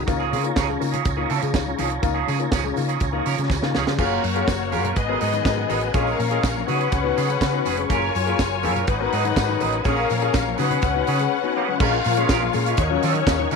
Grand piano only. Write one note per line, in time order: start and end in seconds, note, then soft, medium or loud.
0.07 0.21 A#3 medium
0.07 0.21 D#4 medium
0.07 0.21 F4 loud
0.32 0.45 C#3 medium
0.32 0.45 G#3 medium
0.43 0.57 A#3 medium
0.43 0.54 D#4 medium
0.43 0.54 F4 medium
0.56 0.61 F4 soft
0.68 0.81 C#3 medium
0.68 0.81 G#3 medium
0.80 0.94 A#3 medium
0.80 0.94 D#4 medium
0.80 0.94 F4 medium
1.17 1.30 A#3 medium
1.17 1.30 D#4 medium
1.17 1.31 F4 medium
1.42 1.55 C#3 medium
1.42 1.55 G#3 medium
1.54 1.67 D#4 medium
1.54 1.67 F4 medium
1.66 1.79 C#3 medium
1.66 1.80 G#3 medium
1.77 1.91 D#4 medium
1.77 1.92 F4 medium
2.02 2.16 A#3 medium
2.02 2.16 D#4 medium
2.02 2.16 F4 loud
2.27 2.40 C#3 medium
2.27 2.40 G#3 medium
2.39 2.53 A#3 medium
2.39 2.50 D#4 medium
2.39 2.51 F4 medium
2.52 2.57 D#4 soft
2.52 2.57 F4 soft
2.64 2.77 C#3 medium
2.64 2.77 G#3 medium
2.76 2.89 A#3 medium
2.76 2.90 D#4 medium
2.76 2.90 F4 medium
3.12 3.26 A#3 medium
3.12 3.26 D#4 medium
3.12 3.26 F4 medium
3.37 3.51 C#3 medium
3.37 3.51 G#3 medium
3.62 3.75 A#3 medium
3.62 3.75 D#4 medium
3.62 3.75 F4 medium
3.87 3.99 C#3 medium
3.87 4.00 G#3 medium
3.99 4.12 A#3 medium
3.99 4.12 F4 medium
3.99 4.12 G#4 medium
4.23 4.36 F#3 medium
4.35 4.48 A#3 medium
4.35 4.47 F4 medium
4.35 4.47 G#4 medium
4.60 4.73 F#3 medium
4.72 4.85 A#3 medium
4.72 4.85 F4 medium
4.72 4.85 G#4 medium
5.09 5.22 B3 medium
5.09 5.22 F#4 medium
5.09 5.22 A#4 medium
5.33 5.46 G#2 medium
5.33 5.46 D#3 medium
5.45 5.58 F#4 medium
5.45 5.58 A#4 medium
5.57 5.70 G#2 medium
5.57 5.70 D#3 medium
5.69 5.83 F#4 medium
5.69 5.83 A#4 medium
5.94 6.07 C#4 medium
5.94 6.07 F4 medium
5.94 6.07 G#4 loud
6.18 6.31 A#2 soft
6.18 6.31 F3 medium
6.30 6.43 C#4 medium
6.30 6.41 F4 medium
6.30 6.41 G#4 medium
6.42 6.47 F4 soft
6.42 6.47 G#4 soft
6.55 6.68 A#2 medium
6.55 6.68 F3 medium
6.67 6.80 B3 medium
6.67 6.80 D#4 medium
6.67 6.80 F#4 medium
7.03 7.17 B3 medium
7.03 7.17 D#4 medium
7.03 7.17 F#4 medium
7.28 7.41 C#3 medium
7.28 7.41 G#3 medium
7.52 7.66 B3 medium
7.52 7.66 D#4 medium
7.52 7.66 F#4 medium
7.77 7.90 C#3 medium
7.77 7.90 G#3 medium
7.89 8.03 A#3 medium
7.89 8.03 F4 medium
7.89 8.03 G#4 medium
8.14 8.27 F#3 medium
8.26 8.39 A#3 medium
8.26 8.37 F4 medium
8.26 8.38 G#4 medium
8.51 8.64 F#3 medium
8.63 8.76 A#3 medium
8.63 8.76 F4 medium
8.63 8.76 G#4 medium
9.00 9.13 B3 medium
9.00 9.13 F#4 medium
9.00 9.13 A#4 medium
9.25 9.38 G#2 medium
9.25 9.37 D#3 medium
9.36 9.49 F#4 medium
9.36 9.50 A#4 medium
9.49 9.62 G#2 medium
9.49 9.62 D#3 medium
9.60 9.73 F#4 medium
9.60 9.74 A#4 medium
9.85 9.98 C#4 medium
9.85 9.98 F4 medium
9.85 9.98 G#4 medium
10.09 10.23 A#2 medium
10.09 10.22 F3 medium
10.22 10.35 C#4 medium
10.22 10.33 F4 medium
10.22 10.33 G#4 medium
10.34 10.39 F4 soft
10.34 10.39 G#4 soft
10.47 10.60 A#2 medium
10.47 10.59 F3 medium
10.58 10.71 B3 medium
10.58 10.72 D#4 medium
10.58 10.72 F#4 medium
10.95 11.08 B3 medium
10.95 11.08 D#4 medium
10.95 11.08 F#4 medium
11.19 11.32 C#3 medium
11.19 11.32 G#3 medium
11.43 11.57 B3 medium
11.43 11.57 D#4 medium
11.43 11.57 F#4 medium
11.68 11.82 C#3 medium
11.68 11.79 G#3 medium
11.80 11.94 G#3 medium
11.80 11.94 C#4 medium
11.80 11.94 F4 loud
12.05 12.18 A#2 medium
12.05 12.18 F3 medium
12.17 12.30 G#3 medium
12.17 12.28 C#4 medium
12.17 12.28 F4 medium
12.30 12.35 C#4 soft
12.30 12.35 F4 soft
12.41 12.55 A#2 medium
12.41 12.55 F3 medium
12.53 12.67 G#3 medium
12.53 12.67 C#4 medium
12.53 12.67 F4 medium
12.89 13.03 F#3 medium
12.89 13.03 C#4 medium
12.89 13.03 F4 medium
13.14 13.28 D#3 medium
13.27 13.40 C#4 medium
13.27 13.40 F4 medium
13.39 13.52 D#3 medium
13.51 13.56 C#4 medium
13.51 13.56 F4 medium